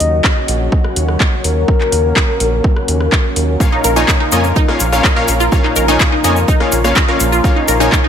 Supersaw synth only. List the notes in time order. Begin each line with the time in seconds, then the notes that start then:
3.60 A#2 A#3 C#4 F4 C#5 F5
3.96 A#2 A#3 C#4 F4 C#5 G#5
4.32 A#2 A#3 C#4 F4 C#5 G#5
4.68 A#2 A#3 C#4 F4 C#5 F5
4.92 A#2 A#3 C#4 F4 C#5 F5
5.16 A#2 A#3 C#4 F4 C#5 F5
5.52 A#2 A#3 C#4 F4 C#5 F5
5.88 A#2 A#3 C#4 F4 C#5 G#5
6.24 A#2 A#3 C#4 F4 C#5 G#5
6.60 A#2 A#3 C#4 F4 C#5 F5
6.84 A#2 A#3 C#4 F4 C#5 F5
7.08 A#2 A#3 C#4 F4 C#5 F5
7.44 A#2 A#3 C#4 F4 C#5 F5
7.80 A#2 A#3 C#4 F4 C#5 G#5